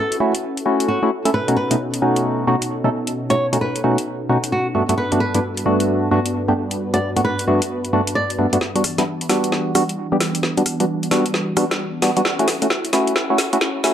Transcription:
Already playing: analog synth pad C#4 E4 F#4 A4, nylon-string guitar A4
0.12 closed hi-hat
0.20 synth stab A3 C#4 E4 F#4
0.35 closed hi-hat
0.57 closed hi-hat
0.66 synth stab A3 C#4 E4 F#4
0.80 closed hi-hat
0.88 nylon-string guitar F#4
1.03 synth stab A3 C#4 E4 F#4
1.25 synth stab A3 C#4 E4 A4, closed hi-hat
1.34 analog synth pad B2 D#4, nylon-string guitar B4
1.48 synth stab B2 A3 C#4 D#4 F#4, closed hi-hat
1.57 nylon-string guitar B4
1.71 synth stab B2 A3 C#4 D#4 F#4, closed hi-hat
1.94 closed hi-hat
2.02 synth stab B2 A3 C#4 D#4 F#4
2.16 closed hi-hat
2.47 synth stab B2 A3 C#4 D#4 F#4
2.62 closed hi-hat
2.84 synth stab B2 A3 C#4 D#4 A4
3.07 closed hi-hat
3.30 synth stab B2 A3 C#4 D#4 F#4, nylon-string guitar C#5, closed hi-hat
3.53 synth stab B2 A3 C#4 D#4 F#4, closed hi-hat
3.61 nylon-string guitar B4
3.76 closed hi-hat
3.84 synth stab B2 A3 C#4 D#4 F#4
3.98 closed hi-hat
4.29 synth stab B2 A3 C#4 D#4 F#4
4.44 closed hi-hat
4.52 nylon-string guitar F#4
4.75 synth stab G2 A3 B3 D4 F#4, analog synth pad G2 B3 D4 F#4 A4
4.89 synth stab G2 A3 B3 D4 F#4, closed hi-hat
4.98 nylon-string guitar B4
5.12 synth stab G2 A3 B3 D4 F#4, closed hi-hat
5.20 nylon-string guitar B4
5.35 synth stab G2 A3 B3 D4 E4, closed hi-hat
5.57 closed hi-hat
5.66 synth stab G2 A3 B3 D4 F#4
5.80 closed hi-hat
6.11 synth stab G2 A3 B3 D4 F#4
6.26 closed hi-hat
6.48 synth stab G2 A3 B3 D4 G4
6.57 analog synth pad B4
6.71 closed hi-hat
6.94 synth stab G2 A3 B3 D4 F#4, nylon-string guitar D5, closed hi-hat
7.16 synth stab G2 A3 B3 D4 F#4, closed hi-hat
7.25 nylon-string guitar B4
7.39 closed hi-hat
7.48 synth stab G2 A3 B3 D4 F#4
7.62 closed hi-hat
7.85 closed hi-hat
7.93 synth stab G2 A3 B3 D4 F#4
8.07 closed hi-hat
8.15 nylon-string guitar D5
8.30 closed hi-hat
8.39 synth stab G2 A3 B3 D4 F#4
8.53 synth stab G2 A3 B3 D4 F#4, closed hi-hat
8.61 analog synth pad E3 G3 B3 D4 F#4, snare
8.75 synth stab G3 B3 D4 F#4, closed hi-hat
8.84 cross-stick, open hi-hat
8.98 synth stab G3 B3 D4 E4, snare, closed hi-hat
9.21 closed hi-hat
9.29 synth stab G3 B3 D4 F#4, snare, open hi-hat
9.44 closed hi-hat
9.52 snare
9.75 synth stab G3 B3 D4 F#4, cross-stick, open hi-hat
9.89 closed hi-hat
10.12 synth stab G3 B3 D4 G4
10.20 snare, open hi-hat
10.35 closed hi-hat
10.43 snare
10.57 synth stab G3 B3 D4 F#4, closed hi-hat
10.66 cross-stick, open hi-hat
10.80 synth stab G3 B3 D4 F#4, closed hi-hat
11.03 closed hi-hat
11.11 synth stab G3 B3 D4 F#4, snare, open hi-hat
11.26 closed hi-hat
11.34 snare
11.57 synth stab G3 B3 D4 F#4, cross-stick, open hi-hat
11.71 snare, closed hi-hat
12.02 synth stab G3 B3 D4 F#4, snare, open hi-hat
12.17 synth stab G3 B3 D4 F#4, closed hi-hat
12.25 analog synth pad C#4 E4 A4, snare
12.39 synth stab A3 C#4 E4 F#4, closed hi-hat
12.48 snare, open hi-hat
12.62 synth stab A3 C#4 E4 F#4, closed hi-hat
12.70 snare
12.85 closed hi-hat
12.93 synth stab A3 C#4 E4 F#4, snare, open hi-hat
13.07 closed hi-hat
13.16 snare
13.30 synth stab A3 C#4 E4 F#4
13.38 snare, open hi-hat
13.53 synth stab A3 C#4 E4 F#4, closed hi-hat
13.61 snare
13.84 synth stab A3 C#4 E4 F#4, snare, open hi-hat

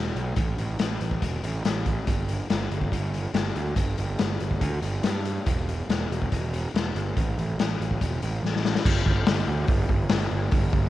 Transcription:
Already playing: picked electric bass E1
0.15 picked electric bass B1, closed hi-hat
0.36 picked electric bass A1, kick, closed hi-hat
0.58 picked electric bass A1, closed hi-hat
0.79 picked electric bass A1, snare, closed hi-hat
1.01 picked electric bass A1, closed hi-hat
1.11 kick
1.22 picked electric bass E1, kick, closed hi-hat
1.43 picked electric bass A1, closed hi-hat
1.65 picked electric bass A1, snare, closed hi-hat
1.86 kick, closed hi-hat
2.07 picked electric bass G1, kick, closed hi-hat
2.28 closed hi-hat
2.50 picked electric bass G1, snare, closed hi-hat
2.70 picked electric bass G1, closed hi-hat
2.81 kick
2.92 picked electric bass G1, kick, closed hi-hat
3.14 closed hi-hat
3.34 picked electric bass G1, snare, closed hi-hat
3.55 picked electric bass D2, closed hi-hat
3.76 picked electric bass G1, kick, closed hi-hat
3.98 picked electric bass G1, closed hi-hat
4.19 picked electric bass G1, snare, closed hi-hat
4.40 picked electric bass G1, closed hi-hat
4.51 kick
4.61 picked electric bass D2, kick, closed hi-hat
4.82 picked electric bass G1, closed hi-hat
5.03 picked electric bass G2, snare, closed hi-hat
5.25 closed hi-hat
5.46 picked electric bass E1, kick, closed hi-hat
5.69 closed hi-hat
5.89 picked electric bass E1, snare, closed hi-hat
6.10 picked electric bass E1, closed hi-hat
6.22 kick
6.32 picked electric bass E1, kick, closed hi-hat
6.54 closed hi-hat
6.74 picked electric bass E1, snare, closed hi-hat
6.95 picked electric bass G1, closed hi-hat
7.17 picked electric bass A1, kick, closed hi-hat
7.38 picked electric bass A1, closed hi-hat
7.58 picked electric bass A1, snare, closed hi-hat
7.80 picked electric bass A1, closed hi-hat
7.91 kick
8.01 picked electric bass E1, kick, closed hi-hat
8.22 picked electric bass A1, closed hi-hat
8.43 picked electric bass A1, snare
8.56 snare
8.65 snare
8.75 snare
8.85 picked electric bass G1, kick, crash
9.06 picked electric bass G1, kick
9.26 picked electric bass G1, snare, open hi-hat
9.47 picked electric bass D2
9.68 picked electric bass G1, kick, open hi-hat
9.89 picked electric bass G1, kick
10.09 picked electric bass G1, snare, open hi-hat
10.31 picked electric bass G1
10.51 picked electric bass G1, kick, open hi-hat
10.73 picked electric bass G1, kick

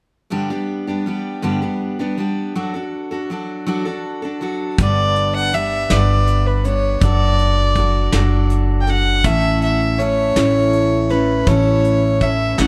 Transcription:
0.30 steel-string acoustic guitar G2 D3 G3 B3 D4 G4
0.50 steel-string acoustic guitar G3 B3 D4 G4
0.87 steel-string acoustic guitar G3 B3 D4 G4
1.06 steel-string acoustic guitar G3 B3 D4 G4
1.42 steel-string acoustic guitar G2 D3 G3 B3 D4 G4
1.62 steel-string acoustic guitar G3 B3 D4 G4
1.99 steel-string acoustic guitar G3 B3 D4 G4
2.17 steel-string acoustic guitar G3 B3 D4 G4
2.55 steel-string acoustic guitar F#3 D4 F#4 A4
2.74 steel-string acoustic guitar D4 F#4 A4
3.11 steel-string acoustic guitar D4 F#4 A4
3.30 steel-string acoustic guitar F#3 D4 F#4 A4
3.66 steel-string acoustic guitar F#3 D4 F#4 A4
3.85 steel-string acoustic guitar D4 F#4 A4
4.22 steel-string acoustic guitar D4 F#4 A4
4.41 steel-string acoustic guitar F#3 D4 F#4 A4
4.78 upright bass G1, steel-string acoustic guitar G2 D3 G3 B3 D4 B4, fiddle D5, kick, closed hi-hat
5.16 closed hi-hat
5.36 fiddle F#5
5.52 steel-string acoustic guitar G3 B3 D4 B4, fiddle E5, closed hi-hat
5.90 upright bass G1, steel-string acoustic guitar G2 D3 G3 B3 D4 B4, fiddle D5, snare, closed hi-hat
6.27 closed hi-hat
6.46 fiddle B4
6.57 fiddle B4
6.64 steel-string acoustic guitar G3 B3 D4 B4, fiddle C#5, closed hi-hat
7.01 upright bass F#1, steel-string acoustic guitar F#3 D4 F#4 A4, fiddle D5, kick, closed hi-hat
7.39 closed hi-hat
7.75 steel-string acoustic guitar F#3 D4 F#4 A4, kick, closed hi-hat
8.12 upright bass F#1, steel-string acoustic guitar F#3 D4 F#4 A4, snare, closed hi-hat
8.50 closed hi-hat
8.81 fiddle G5
8.87 steel-string acoustic guitar D4 F#4 A4, fiddle F#5, closed hi-hat
9.24 upright bass A1, steel-string acoustic guitar A2 E3 A3 C#4 E4 A4, fiddle E5, kick, closed hi-hat
9.62 fiddle E5, closed hi-hat
9.98 steel-string acoustic guitar A3 C#4 E4 A4, fiddle C#5, closed hi-hat
10.36 upright bass A1, steel-string acoustic guitar A2 E3 A3 C#4 E4 A4, snare, closed hi-hat
10.73 closed hi-hat
11.09 steel-string acoustic guitar A3 C#4 E4 A4, fiddle B4, closed hi-hat
11.47 upright bass A1, steel-string acoustic guitar A2 E3 A3 C#4 E4 A4, fiddle C#5, kick, closed hi-hat
11.84 closed hi-hat
12.20 steel-string acoustic guitar A3 C#4 E4 A4, fiddle E5, kick, closed hi-hat
12.58 upright bass A1, steel-string acoustic guitar A2 E3 A3 C#4 E4 A4, fiddle F#5, snare, closed hi-hat

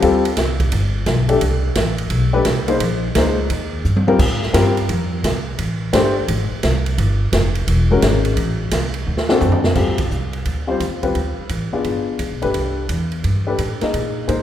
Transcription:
0.01 upright bass D2, upright piano G3 C4 F4 A4, kick, ride
0.25 ride
0.37 upright bass C2, kick, snare, hi-hat pedal, ride
0.60 kick, ride
0.72 upright bass G1, kick, ride
1.06 upright bass B1, kick, snare, hi-hat pedal, ride
1.28 upright piano A3 D4 G4 A4, ride
1.41 upright bass C2, kick, ride
1.75 upright bass A1, kick, snare, hi-hat pedal, ride
1.98 ride
2.10 upright bass B1, kick, ride
2.33 upright piano A3 D4 G4 B4
2.45 upright bass C2, kick, snare, hi-hat pedal, ride
2.68 upright piano A#3 D#4 G#4 C5, ride
2.80 upright bass A#1, kick, ride
3.15 upright bass C#2, upright piano A#3 D#4 G#4 C5, kick, snare, hi-hat pedal, ride
3.50 upright bass D#2, kick, ride
3.85 upright bass G2, hi-hat pedal
3.97 high tom
4.07 upright piano G3 C4 F4 A#4, high tom
4.19 upright bass G#2, kick, crash
4.43 snare
4.53 upright bass G2, upright piano G3 C4 F4 A#4, kick, snare, hi-hat pedal, ride
4.77 ride
4.89 upright bass F2, kick, ride
5.23 upright bass C2, kick, snare, hi-hat pedal, ride
5.58 upright bass A1, kick, ride
5.93 upright bass G1, upright piano A3 D4 G4 C5, kick, snare, hi-hat pedal, ride
6.28 upright bass G#1, kick, ride
6.51 muted upright bass stroke
6.63 upright bass C2, kick, snare, hi-hat pedal, ride
6.86 ride
6.98 upright bass G1, kick, ride
7.32 upright bass F1, kick, snare, hi-hat pedal, ride
7.55 ride
7.67 upright bass E1, kick, ride
7.91 upright piano G#3 C#4 F#4 A#4
8.02 upright bass G#1, kick, snare, hi-hat pedal, ride
8.25 ride
8.37 upright bass A1, kick, ride
8.71 upright bass C2, kick, snare, hi-hat pedal, ride
8.94 ride
9.07 upright bass D2
9.17 snare
9.29 upright piano C4 D4 F#4 A4, snare
9.40 upright bass F#2, floor tom, hi-hat pedal
9.52 floor tom
9.64 snare
9.75 upright bass G2, upright piano G3 C4 F4 A4, kick, crash
9.98 kick, ride
10.11 upright bass C2, kick, hi-hat pedal
10.33 ride
10.45 upright bass D2, kick, ride
10.67 upright piano G3 C4 F4 C5
10.80 upright bass D#2, kick, hi-hat pedal, ride
11.02 upright piano G3 C4 F4 B4, kick, ride
11.15 upright bass D2, kick, ride
11.38 muted upright bass stroke
11.49 upright bass A1, kick, hi-hat pedal, ride
11.73 upright piano B3 D4 F4 G#4, muted upright bass stroke
11.84 upright bass G1, kick, ride
12.19 upright bass D2, kick, hi-hat pedal, ride
12.32 upright bass B1
12.42 upright bass G1, upright piano A3 D4 G4 B4, ride
12.54 upright bass C2, kick, ride
12.89 upright bass E2, kick, hi-hat pedal, ride
13.12 ride
13.24 upright bass G2, kick, ride
13.47 upright piano A3 D4 G4 B4
13.59 upright bass A2, kick, hi-hat pedal, ride
13.81 upright piano A#3 D#4 G#4 D#5, muted upright bass stroke, snare, ride
13.94 upright bass A#2, kick, ride
14.28 upright bass G#2, upright piano A#3 D#4 G#4 C5, kick, hi-hat pedal, ride

